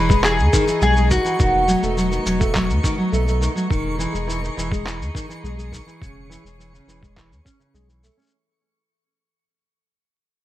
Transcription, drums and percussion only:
0.10 kick, shaker
0.24 clap, shaker
0.39 shaker
0.53 kick, shaker
0.68 shaker
0.82 shaker
0.97 shaker
1.11 kick, shaker
1.26 shaker
1.40 kick, shaker
1.69 shaker
1.83 shaker
1.98 shaker
2.12 shaker
2.26 shaker
2.41 kick, shaker
2.55 kick, clap, shaker
2.70 shaker
2.84 kick, shaker
3.14 shaker
3.28 shaker
3.42 shaker
3.57 shaker
3.71 kick, shaker
4.00 shaker
4.15 shaker
4.30 shaker
4.44 shaker
4.59 shaker
4.72 kick, shaker
4.87 clap, shaker
5.02 shaker
5.15 kick, shaker
5.31 shaker
5.45 shaker
5.59 shaker
5.73 kick, shaker
5.88 shaker
6.02 kick, shaker
6.32 shaker
6.46 shaker
6.61 shaker
6.75 shaker
6.89 shaker
7.03 kick, shaker
7.17 kick, clap, shaker
7.32 shaker
7.46 kick, shaker
7.61 shaker
7.75 shaker
7.89 shaker
8.04 shaker
8.18 shaker
8.21 shaker
8.24 shaker
8.26 shaker
8.28 shaker
8.30 shaker

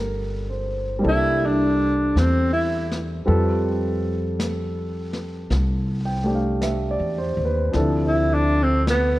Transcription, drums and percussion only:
1.05 brush sweep
2.17 brush sweep, snare, hi-hat pedal
2.91 snare
3.27 brush sweep
4.40 brush sweep, snare, hi-hat pedal
5.13 snare
5.51 brush sweep, snare
6.62 brush sweep, snare, hi-hat pedal
7.74 brush sweep, snare
8.87 brush sweep, snare, hi-hat pedal

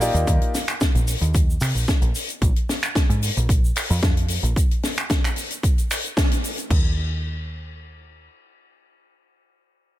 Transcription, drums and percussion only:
0.01 open hi-hat, cabasa, shaker
0.15 closed hi-hat, cabasa, shaker
0.27 kick, closed hi-hat, cabasa, shaker
0.42 closed hi-hat
0.54 snare, open hi-hat, cabasa, shaker
0.68 finger snap, closed hi-hat, cabasa, shaker
0.80 kick, snare, closed hi-hat, cabasa, shaker
0.95 closed hi-hat, shaker
1.08 open hi-hat, cabasa, shaker
1.22 closed hi-hat, cabasa, shaker
1.34 kick, closed hi-hat, cabasa, shaker
1.50 shaker
1.61 finger snap, open hi-hat, cabasa, shaker
1.75 cabasa, shaker
1.87 kick, snare, closed hi-hat, cabasa, shaker
2.02 closed hi-hat, cabasa
2.15 open hi-hat, cabasa, shaker
2.28 closed hi-hat, cabasa, shaker
2.42 kick, closed hi-hat, shaker
2.56 closed hi-hat
2.69 snare, open hi-hat, shaker
2.83 finger snap, closed hi-hat, shaker
2.95 kick, snare, closed hi-hat, shaker
3.10 closed hi-hat, shaker
3.23 open hi-hat, shaker
3.37 closed hi-hat, shaker
3.49 kick, closed hi-hat, shaker
3.65 shaker
3.76 finger snap, open hi-hat, shaker
3.91 shaker
4.02 kick, snare, closed hi-hat, shaker
4.17 closed hi-hat
4.28 open hi-hat, shaker
4.44 closed hi-hat, shaker
4.56 kick, closed hi-hat, shaker
4.71 closed hi-hat
4.83 snare, open hi-hat, shaker
4.97 finger snap, closed hi-hat, shaker
5.10 kick, snare, closed hi-hat, shaker
5.24 finger snap, closed hi-hat, shaker
5.36 open hi-hat, shaker
5.50 closed hi-hat, shaker
5.63 kick, closed hi-hat, shaker
5.78 closed hi-hat, shaker
5.90 finger snap, open hi-hat, shaker
6.04 closed hi-hat, shaker
6.17 kick, snare, closed hi-hat, shaker
6.31 closed hi-hat, shaker
6.44 open hi-hat, shaker
6.58 closed hi-hat, shaker
6.70 kick, crash

